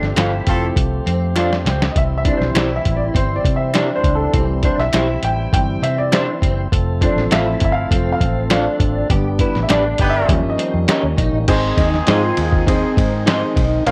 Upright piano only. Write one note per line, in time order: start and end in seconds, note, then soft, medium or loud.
0.00 0.88 A4 medium
0.47 1.32 F3 soft
0.47 1.32 A3 soft
0.47 1.32 C4 medium
1.91 1.96 D#5 medium
1.97 2.02 E5 medium
2.18 2.35 E5 medium
2.26 2.65 E3 medium
2.26 2.65 G3 soft
2.26 2.66 C4 medium
2.37 2.55 C5 medium
2.56 2.74 D5 medium
2.76 2.96 E5 medium
2.96 3.01 D5 medium
3.16 3.36 C5 medium
3.36 3.54 D5 medium
3.56 3.76 E5 medium
3.76 3.93 D5 medium
3.96 4.15 C5 medium
4.15 4.42 A4 medium
4.34 4.73 E3 medium
4.34 4.74 G3 soft
4.34 4.74 C4 medium
4.65 4.79 C5 medium
4.80 5.21 E5 loud
5.24 5.51 G5 loud
5.53 5.80 E3 soft
5.53 5.80 G3 soft
5.53 5.80 C4 medium
5.53 5.84 G5 loud
5.83 5.98 E5 medium
5.98 6.12 D5 medium
6.13 6.68 C5 medium
7.02 7.87 F3 medium
7.02 7.87 A3 soft
7.02 7.87 C4 medium
7.02 7.32 C5 medium
7.32 7.63 E5 loud
7.65 7.71 E5 medium
7.72 8.11 F5 medium
7.91 8.18 F3 soft
7.91 8.18 A3 soft
7.91 8.18 C4 medium
8.12 8.39 F5 medium
9.10 9.50 D3 medium
9.10 9.50 G3 medium
9.10 9.50 B3 medium
9.40 9.61 B4 medium
9.63 9.70 E5 medium
9.70 10.11 D5 medium
10.10 10.50 E5 medium
10.28 11.14 F3 medium
10.28 11.15 G3 medium
10.28 11.15 C#4 medium
10.50 10.77 D#5 medium
11.48 11.83 C4 loud
11.48 11.83 D#4 loud
11.48 11.83 G#4 loud
11.48 11.83 C5 loud
11.48 11.83 D#5 loud
12.08 12.42 C4 medium
12.08 12.42 D#4 medium
12.08 12.43 G#4 medium
12.08 12.43 C5 medium
12.08 12.43 D#5 loud
12.68 13.02 C4 medium
12.68 13.02 D#4 medium
12.68 13.02 G#4 medium
12.68 13.02 C5 medium
12.68 13.02 D#5 medium
13.27 13.61 C4 medium
13.27 13.61 D#4 medium
13.27 13.61 G#4 medium
13.27 13.62 C5 medium
13.27 13.61 D#5 loud
13.86 13.91 C#4 loud
13.86 13.91 F4 loud
13.86 13.91 A#4 loud
13.86 13.91 C#5 loud
13.86 13.91 F5 loud